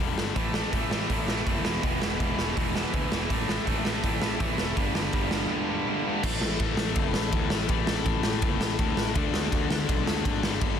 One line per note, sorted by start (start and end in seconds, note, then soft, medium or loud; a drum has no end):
0.00 0.13 E1 medium
0.00 0.17 G2 medium
0.00 0.18 D3 medium
0.00 0.18 G3 medium
0.16 0.30 G1 medium
0.16 0.35 G2 medium
0.16 0.36 D3 medium
0.16 0.36 G3 medium
0.16 snare loud
0.36 0.63 A1 medium
0.36 0.54 A2 medium
0.36 0.56 E3 medium
0.36 0.55 A3 medium
0.36 kick loud
0.36 open hi-hat medium
0.54 0.73 A2 medium
0.54 0.74 E3 medium
0.54 0.73 A3 medium
0.54 snare loud
0.73 0.87 A1 medium
0.73 0.91 A2 medium
0.73 0.92 E3 medium
0.73 0.92 A3 medium
0.73 kick loud
0.73 open hi-hat medium
0.90 1.04 A1 medium
0.90 1.09 A2 medium
0.90 1.10 E3 medium
0.90 1.10 A3 medium
0.90 snare medium
1.10 1.23 A1 medium
1.10 1.27 A2 medium
1.10 1.29 E3 medium
1.10 1.28 A3 medium
1.10 kick loud
1.10 open hi-hat medium
1.27 1.41 A1 medium
1.27 1.45 A2 medium
1.27 1.47 E3 medium
1.27 1.46 A3 medium
1.27 snare loud
1.46 1.60 F#1 medium
1.46 1.64 A2 medium
1.46 1.65 E3 medium
1.46 1.64 A3 medium
1.46 kick medium
1.46 open hi-hat soft
1.65 1.78 E1 medium
1.65 1.83 E2 medium
1.65 1.83 B2 medium
1.65 1.85 E3 loud
1.65 snare loud
1.83 1.97 E1 medium
1.83 2.01 E2 medium
1.83 2.02 B2 medium
1.83 2.03 E3 medium
1.83 kick loud
1.83 open hi-hat medium
2.02 2.16 E1 medium
2.02 2.19 E2 medium
2.02 2.20 B2 medium
2.02 2.21 E3 loud
2.02 snare loud
2.20 2.33 E1 medium
2.20 2.38 E2 medium
2.20 2.38 B2 medium
2.20 2.39 E3 medium
2.20 kick medium
2.20 open hi-hat soft
2.39 2.52 E1 medium
2.39 2.56 E2 medium
2.39 2.57 B2 medium
2.39 2.57 E3 medium
2.39 snare loud
2.57 2.84 E1 medium
2.57 2.75 E2 medium
2.57 2.75 B2 medium
2.57 2.76 E3 medium
2.57 kick loud
2.57 open hi-hat medium
2.76 2.93 E2 medium
2.76 2.93 B2 medium
2.76 2.94 E3 medium
2.76 snare loud
2.94 3.07 D2 medium
2.94 3.11 E2 medium
2.94 3.11 B2 medium
2.94 3.12 E3 medium
2.94 kick loud
2.94 open hi-hat soft
3.12 3.25 E1 medium
3.12 3.29 E2 medium
3.12 3.29 B2 medium
3.12 3.30 E3 medium
3.12 snare loud
3.30 3.57 A1 medium
3.30 3.48 A2 medium
3.30 3.49 E3 medium
3.30 3.49 A3 loud
3.30 kick loud
3.30 open hi-hat medium
3.49 3.66 A2 medium
3.49 3.66 E3 medium
3.49 3.67 A3 medium
3.49 snare loud
3.67 3.81 A1 medium
3.67 3.84 A2 medium
3.67 3.84 E3 medium
3.67 3.85 A3 medium
3.67 kick medium
3.67 open hi-hat soft
3.85 3.98 A1 medium
3.85 4.02 A2 medium
3.85 4.03 E3 medium
3.85 4.03 A3 medium
3.85 snare loud
4.04 4.17 A1 medium
4.04 4.20 A2 medium
4.04 4.20 E3 loud
4.04 4.21 A3 loud
4.04 kick loud
4.04 open hi-hat medium
4.21 4.35 A1 medium
4.21 4.39 A2 medium
4.21 4.40 E3 medium
4.21 4.40 A3 medium
4.21 snare loud
4.40 4.54 A1 medium
4.40 4.57 A2 medium
4.40 4.57 E3 medium
4.40 4.58 A3 medium
4.40 kick loud
4.40 open hi-hat soft
4.58 4.72 E1 medium
4.58 4.76 A2 medium
4.58 4.76 E3 medium
4.58 4.76 A3 medium
4.58 snare loud
4.77 4.90 G1 medium
4.77 4.94 G2 medium
4.77 4.94 D3 medium
4.77 4.95 G3 loud
4.77 kick loud
4.77 open hi-hat medium
4.95 5.08 G1 medium
4.95 5.12 G2 medium
4.95 5.13 D3 medium
4.95 5.13 G3 medium
4.95 snare loud
5.13 5.27 G1 medium
5.13 5.30 G2 medium
5.13 5.30 D3 medium
5.13 5.31 G3 medium
5.13 kick loud
5.13 open hi-hat soft
5.31 5.45 G1 medium
5.31 5.49 G2 medium
5.31 5.49 D3 medium
5.31 5.50 G3 medium
5.31 snare medium
5.50 5.67 G2 medium
5.50 5.68 D3 loud
5.50 5.69 G3 loud
5.69 5.86 G2 medium
5.69 5.87 D3 medium
5.69 5.87 G3 medium
5.87 6.05 G2 medium
5.87 6.05 D3 medium
5.87 6.05 G3 medium
6.06 6.23 G2 medium
6.06 6.23 D3 medium
6.06 6.23 G3 medium
6.23 6.40 A1 medium
6.23 7.68 A2 medium
6.23 7.69 E3 medium
6.23 7.71 A3 loud
6.23 kick loud
6.23 crash loud
6.41 6.58 A1 medium
6.41 snare loud
6.60 6.76 A1 medium
6.60 kick loud
6.60 ride medium
6.77 6.94 A1 medium
6.77 snare loud
6.96 7.13 F#1 loud
6.96 kick loud
6.96 ride medium
7.14 7.31 A1 medium
7.14 snare loud
7.32 7.49 D2 loud
7.32 kick loud
7.32 ride medium
7.50 7.67 A1 loud
7.50 snare loud
7.69 7.85 A1 medium
7.69 9.14 A2 loud
7.69 9.15 E3 loud
7.69 9.15 A3 loud
7.69 kick loud
7.69 ride medium
7.86 8.03 A1 medium
7.86 snare loud
8.06 8.22 A1 loud
8.06 kick loud
8.06 ride medium
8.23 8.40 A1 loud
8.23 snare loud
8.42 8.59 F#1 loud
8.42 kick loud
8.42 ride medium
8.61 8.77 A1 loud
8.61 snare loud
8.79 8.95 D2 loud
8.79 kick loud
8.79 ride medium
8.96 9.13 A1 loud
8.96 snare loud
9.15 9.32 D2 medium
9.15 10.42 D3 medium
9.15 10.42 A3 medium
9.15 10.43 D4 loud
9.15 kick loud
9.15 ride medium
9.33 9.49 D2 medium
9.33 snare loud
9.52 9.69 D2 loud
9.52 kick loud
9.52 ride medium
9.69 9.86 D2 loud
9.69 snare loud
9.89 10.05 B1 medium
9.89 kick loud
9.89 ride medium
10.06 10.23 D2 loud
10.06 snare loud
10.25 10.41 G#1 medium
10.25 kick loud
10.25 ride medium
10.42 10.59 G1 medium
10.42 10.80 G2 loud
10.42 10.80 D3 loud
10.42 10.80 G3 loud
10.42 snare loud
10.61 10.78 G1 loud
10.61 kick loud
10.61 ride medium